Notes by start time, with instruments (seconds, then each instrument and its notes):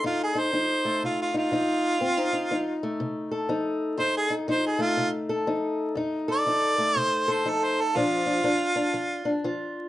Already playing: steel-string acoustic guitar A3
0.04 steel-string acoustic guitar F2 D#4, harmonica F4
0.23 harmonica G#4
0.35 steel-string acoustic guitar D#4
0.39 harmonica C5
0.53 steel-string acoustic guitar F3 D#4
0.85 steel-string acoustic guitar A3
1.03 steel-string acoustic guitar C3, harmonica F4
1.22 harmonica F4
1.34 steel-string acoustic guitar D#4, harmonica F4
1.52 steel-string acoustic guitar F3 D#4
2.00 steel-string acoustic guitar F2 C4
2.17 steel-string acoustic guitar D#4
2.33 steel-string acoustic guitar D#4
2.51 steel-string acoustic guitar F3 D#4
2.83 steel-string acoustic guitar A3
3.00 steel-string acoustic guitar C3
3.31 steel-string acoustic guitar A4
3.49 steel-string acoustic guitar F3 D#4
3.98 steel-string acoustic guitar F2 D#4, harmonica C5
4.17 harmonica G#4
4.30 steel-string acoustic guitar D#4
4.48 steel-string acoustic guitar F3 D#4, harmonica C5
4.66 harmonica G#4
4.79 steel-string acoustic guitar A3, harmonica F4
4.97 steel-string acoustic guitar C3
5.29 steel-string acoustic guitar A4
5.47 steel-string acoustic guitar F3 D#4
5.95 steel-string acoustic guitar F2 D#4
6.28 steel-string acoustic guitar A4, harmonica D5
6.46 steel-string acoustic guitar F3 D#4
6.78 steel-string acoustic guitar A3
6.96 steel-string acoustic guitar C3, harmonica C5
7.28 steel-string acoustic guitar A4
7.33 harmonica C5
7.45 steel-string acoustic guitar F3 D#4, harmonica A4
7.64 harmonica C5
7.80 harmonica A4
7.95 steel-string acoustic guitar A#2 F3 D4, harmonica F4
8.26 steel-string acoustic guitar D4
8.44 steel-string acoustic guitar F3 D4
8.76 steel-string acoustic guitar D4
8.94 steel-string acoustic guitar F3
9.25 steel-string acoustic guitar D4
9.44 steel-string acoustic guitar F3 F4